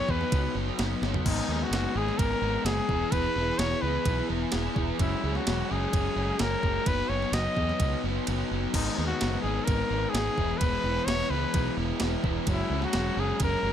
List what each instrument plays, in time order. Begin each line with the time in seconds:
Already playing: trumpet C#5
0.08 fingered electric bass E2, overdriven electric guitar F#3 B3 D#4 F#4, trumpet B4, kick
0.21 snare
0.32 fingered electric bass C#2, overdriven electric guitar F#3 B3 D#4 F#4, kick, ride bell
0.55 fingered electric bass F#1, overdriven electric guitar F#3 B3 D#4 F#4
0.79 fingered electric bass F#1, overdriven electric guitar F#3 B3 D#4 F#4, snare, ride bell
1.02 fingered electric bass G1, overdriven electric guitar F#3 B3 D#4 F#4, snare
1.14 floor tom
1.26 fingered electric bass G#1, overdriven electric guitar G#3 B3 D#4 G#4, trumpet D#4, kick, crash
1.48 fingered electric bass D#2, overdriven electric guitar G#3 B3 D#4 G#4
1.63 trumpet F#4
1.71 fingered electric bass F#1, overdriven electric guitar G#3 B3 D#4 G#4, snare, ride bell
1.95 fingered electric bass G#1, overdriven electric guitar G#3 B3 D#4 G#4, trumpet G#4
2.08 snare
2.18 fingered electric bass G#1, overdriven electric guitar G#3 B3 D#4 G#4, trumpet A#4, kick, ride bell
2.42 fingered electric bass G#1, overdriven electric guitar G#3 B3 D#4 G#4
2.65 fingered electric bass F#1, overdriven electric guitar G#3 B3 D#4 G#4, trumpet G#4, snare, ride bell
2.89 fingered electric bass E1, overdriven electric guitar E3 B3 E4 G#4, kick
3.11 fingered electric bass E1, overdriven electric guitar E3 B3 E4 G#4, trumpet B4, kick, ride bell
3.36 fingered electric bass E1, overdriven electric guitar E3 B3 E4 G#4
3.58 fingered electric bass E1, overdriven electric guitar E3 B3 E4 G#4, trumpet C#5, snare, ride bell
3.72 snare
3.82 fingered electric bass C#2, overdriven electric guitar E3 B3 E4 G#4, trumpet B4
4.05 fingered electric bass B1, overdriven electric guitar E3 B3 E4 G#4, kick, ride bell
4.29 fingered electric bass E1, overdriven electric guitar E3 B3 E4 G#4
4.52 fingered electric bass E1, overdriven electric guitar E3 B3 E4 G#4, snare, ride bell
4.76 fingered electric bass E1, overdriven electric guitar E3 B3 E4 G#4, kick
4.99 fingered electric bass F#1, overdriven electric guitar F#3 G#3 C#4 G#4, trumpet E4, kick, ride bell
5.23 fingered electric bass C#2, overdriven electric guitar F#3 G#3 C#4 G#4
5.35 trumpet F#4, snare
5.46 fingered electric bass E1, overdriven electric guitar F#3 G#3 C#4 G#4, snare, ride bell
5.69 fingered electric bass F#1, overdriven electric guitar F#3 G#3 C#4 G#4, trumpet G#4
5.93 fingered electric bass F#1, overdriven electric guitar F#3 G#3 C#4 G#4, kick, ride bell
6.16 fingered electric bass F#1, overdriven electric guitar F#3 G#3 C#4 G#4
6.39 fingered electric bass F#1, overdriven electric guitar F#3 G#3 C#4 G#4, trumpet A#4, snare, ride bell
6.63 fingered electric bass F#1, overdriven electric guitar F#3 G#3 C#4 G#4, kick
6.86 fingered electric bass F#1, overdriven electric guitar F#3 B3 D#4 F#4, trumpet B4, kick, ride bell
7.09 fingered electric bass F#1, overdriven electric guitar F#3 B3 D#4 F#4, trumpet C#5
7.22 snare
7.32 fingered electric bass F#1, overdriven electric guitar F#3 B3 D#4 F#4, trumpet D#5, snare, ride bell
7.56 fingered electric bass E2, overdriven electric guitar F#3 B3 D#4 F#4, kick
7.69 snare
7.80 fingered electric bass C#2, overdriven electric guitar F#3 B3 D#4 F#4, kick, ride bell
8.04 fingered electric bass F#1, overdriven electric guitar F#3 B3 D#4 F#4
8.27 fingered electric bass F#1, overdriven electric guitar F#3 B3 D#4 F#4, ride bell
8.51 fingered electric bass F#1, overdriven electric guitar F#3 B3 D#4 F#4
8.74 fingered electric bass G#1, overdriven electric guitar G#2 D#3 G#3 B3 D#4, trumpet D#4, kick, crash, ride bell
8.97 fingered electric bass D#2, overdriven electric guitar G#2 D#3 G#3 B3 D#4
9.07 trumpet F#4, snare
9.20 fingered electric bass F#1, overdriven electric guitar G#2 D#3 G#3 B3 D#4, snare, ride bell
9.33 snare
9.41 fingered electric bass G#1, overdriven electric guitar G#2 D#3 G#3 B3 D#4, trumpet G#4
9.64 fingered electric bass G#1, overdriven electric guitar G#2 D#3 G#3, trumpet A#4, kick, ride bell
9.68 overdriven electric guitar B3 D#4
9.90 fingered electric bass G#1, overdriven electric guitar G#2 D#3 G#3 B3 D#4
10.10 trumpet G#4
10.14 fingered electric bass G#1, overdriven electric guitar G#2 D#3 G#3 B3 D#4, snare, ride bell
10.38 fingered electric bass E1, overdriven electric guitar E3 G#3 B3 E4, kick
10.58 fingered electric bass E1, trumpet B4, kick, ride bell
10.62 overdriven electric guitar E3 G#3 B3 E4
10.83 fingered electric bass E1, overdriven electric guitar E3 G#3 B3 E4
11.05 fingered electric bass E1, overdriven electric guitar E3 G#3 B3 E4, trumpet C#5, snare, ride bell
11.20 snare
11.30 fingered electric bass C#2, overdriven electric guitar E3 G#3 B3 E4, trumpet B4
11.54 fingered electric bass B1, overdriven electric guitar E3 G#3 B3 E4, kick, ride bell
11.77 fingered electric bass E1, overdriven electric guitar E3 G#3 B3 E4
12.00 fingered electric bass E1, overdriven electric guitar E3 G#3 B3 E4, snare, ride bell
12.24 fingered electric bass E1, overdriven electric guitar E3 G#3 B3 E4, kick
12.47 fingered electric bass F#1, overdriven electric guitar F#3 G#3 C#4 F#4, kick, ride bell
12.52 trumpet E4
12.70 fingered electric bass C#2, overdriven electric guitar F#3 G#3 C#4 F#4
12.82 trumpet F#4, snare
12.93 fingered electric bass E1, overdriven electric guitar F#3 G#3 C#4 F#4, snare, ride bell
13.17 fingered electric bass F#1, overdriven electric guitar F#3 G#3 C#4 F#4, trumpet G#4
13.40 fingered electric bass F#1, overdriven electric guitar F#3 G#3 C#4 F#4, trumpet A#4, kick, ride bell
13.63 fingered electric bass F#1, overdriven electric guitar F#3 G#3 C#4 F#4